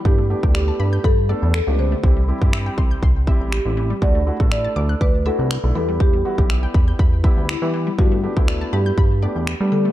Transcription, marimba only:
X:1
M:4/4
L:1/8
Q:1/4=121
K:G
V:1 name="Marimba"
G2 G2 A2 A c- | c4- c z G2 | d2 d2 B A2 A | G6 E2 |
F3 G4 A |]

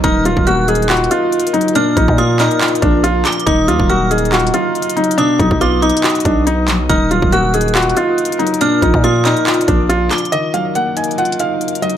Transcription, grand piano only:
X:1
M:4/4
L:1/8
Q:1/4=140
K:Ebm
V:1 name="Grand piano"
E, G, B, E F E2 G, | B,, F, B, =d F =D2 F, | E, G, B, E F E2 G, | =B,, ^F, =B, ^D ^F D2 F, |
E, G, B, E F E2 G, | B,, F, B, =d F =D2 F, | E, G, B, E F E2 G, |]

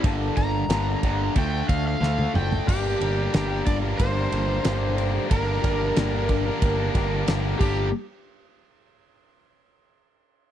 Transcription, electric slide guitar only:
X:1
M:4/4
L:1/16
Q:1/4=91
K:Gm
V:1 name="Electric slide guitar"
z2 b6 g2 f f3 g2 | G6 d2 c8 | B12 z2 G2 | z16 |]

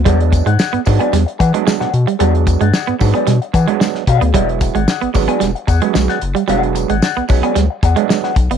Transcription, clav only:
X:1
M:4/4
L:1/16
Q:1/4=112
K:Emix
V:1 name="Clav" clef=bass
[F,G,B,D]3 z3 [F,G,B,D]3 z2 [F,G,B,D]3 z2 | [F,G,B,D]3 z3 [F,G,B,D]3 z2 [F,G,B,D]3 z2 | [F,G,B,E]3 z3 [F,G,B,D]3 z2 [F,G,B,C]3 z2 | [F,=G,^G,B,D]3 z3 [F,G,B,C]3 z2 [F,G,B,D]3 z2 |]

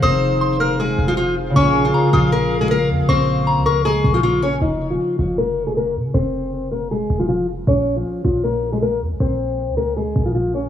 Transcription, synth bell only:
X:1
M:4/4
L:1/8
Q:1/4=157
K:Fm
V:1 name="Synth bell"
e'2 c' f' z4 | d'2 b e'3 z2 | d'2 b d'4- d' | z8 |
z8 | z8 | z8 |]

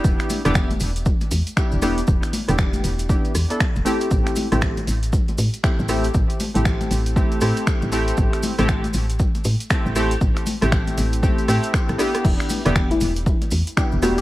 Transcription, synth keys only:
X:1
M:4/4
L:1/16
Q:"Swing 16ths" 1/4=118
K:Ador
V:1 name="Synth keys"
[B,DEG]3 [B,DEG]2 z6 z [B,DEG]2 [B,DEG] z | z3 [B,DEG]4- [B,DEG] [B,DEG]2 z [B,DEA] z2 [A,CEG]2- | [A,CEG]3 [A,CEG]2 z6 z [A,CEG]2 [A,CEG] z | z3 [A,CEG]4- [A,CEG] [A,CEG]2 [A,CEG]4 [A,CEG]2- |
[A,CEG]3 [A,CEG]2 z6 z [A,CEG]2 [A,CEG] z | z3 [A,CEG]4- [A,CEG] [A,CEG]2 [A,CEG]4 [B,DEG]2- | [B,DEG]3 [B,DEG]2 z6 z [B,DEG]2 [B,DEG] z |]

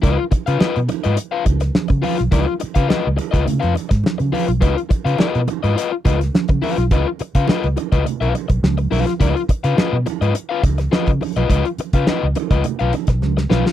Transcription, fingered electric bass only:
X:1
M:4/4
L:1/16
Q:1/4=105
K:Dbmix
V:1 name="Fingered electric bass" clef=bass
D,, z2 D, z C, z A,, z2 D,,2 z D, z C,, | D,, z2 D, z D,, z D,, D, F,, z A,, z D, z C,, | D,, z2 D, z C, z A,, z2 D,,2 z D, z C,, | D,, z2 D, z D,, z D,, z C,, z C,, D,,2 C,, z |
D,, z2 D, z C, z A,, z2 D,,2 z D, z C,, | D,, z2 D, z D,, z D,, z C,, z C,, D,,2 C,, z |]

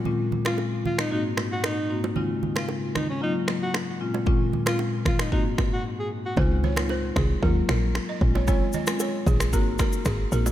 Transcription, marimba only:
X:1
M:4/4
L:1/16
Q:1/4=114
K:Bbm
V:1 name="Marimba"
[B,,A,CDF]3 [B,,A,CDF] z4 [A,,B,CEG]6 [A,,B,CEG]2 | [D,A,CEF]3 [D,A,CE] z4 [G,B,DF]6 [B,,A,CDF]2 | [B,,A,CDF]3 [B,,A,CDF] z4 [A,,B,CEG]4 z4 | [A,CEF]3 [A,CEF] z4 [G,B,DF]6 [A,CDF]2 |
[A,CDF]3 [A,CDF] z4 [B,CEG]6 [B,CEG]2 |]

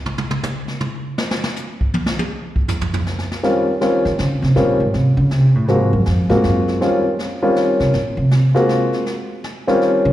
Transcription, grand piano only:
X:1
M:3/4
L:1/8
Q:"Swing" 1/4=160
K:Ebmix
V:1 name="Grand piano"
z6 | z6 | z6 | [E,G,CDF] z [E,G,CDF] z3 |
[E,G,CDF] z4 z | [F,A,B,C_G] z2 [A,B,CFG]3 | [E,G,CDF] z2 [E,G,CDF]3 | z3 [A,B,CF_G]3 |
z3 [E,G,CDF]3 |]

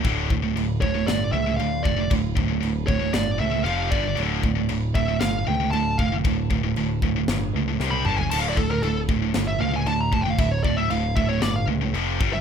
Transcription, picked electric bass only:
X:1
M:4/4
L:1/8
Q:1/4=116
K:Dm
V:1 name="Picked electric bass" clef=bass
D,,, D,,, D,,, D,,, G,,, ^C,, D,, F,,, | D,,, D,,, D,,, D,,, G,,, ^C,, F,,, G,,, | D,,, D,,, D,,, D,,, G,,, ^C,, D,, F,,, | D,,, D,,, D,,, D,,, G,,, ^C,, =C,, G,,, |
D,,, D,,, D,,, D,,, G,,, ^C,, D,, F,,, | D,,, D,,, D,,, D,,, G,,, ^C,, F,,, G,,, |]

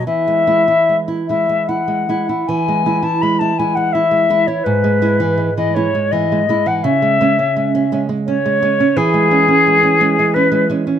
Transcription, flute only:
X:1
M:3/4
L:1/16
Q:1/4=83
K:E
V:1 name="Flute"
e6 e2 f4 | g3 a b a g f e3 c | B4- B d c2 d3 f | e6- e z c4 |
G8 B2 z2 |]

